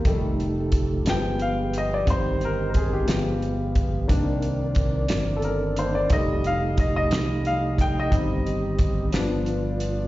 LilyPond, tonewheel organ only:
<<
  \new Staff \with { instrumentName = "Tonewheel organ" } { \time 6/8 \key c \minor \tempo 4. = 60 << { g'4. g'4.~ | g'4. g'4. | bes'2. | g'2.~ |
g'4. f'4. | } \\ { ees'4. b4. | c'4. b4. | d'2. | ees'2. |
c'4. b4. | } >> }
  \new Staff \with { instrumentName = "Tonewheel organ" } { \clef bass \time 6/8 \key c \minor << { a4. aes4. | g4. aes4. | c'2. | a2. |
g2. | } \\ { f2. | ees4. f4. | ees2. | f2. |
ees4. d4. | } >> }
>>